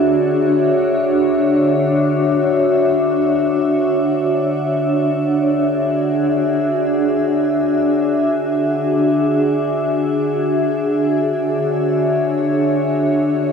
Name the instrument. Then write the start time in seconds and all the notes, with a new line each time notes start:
ambient pad
Already playing: D3 D4 F#4 G#4 C#5 E5
5.41 G#4
10.85 D3
11.31 C#5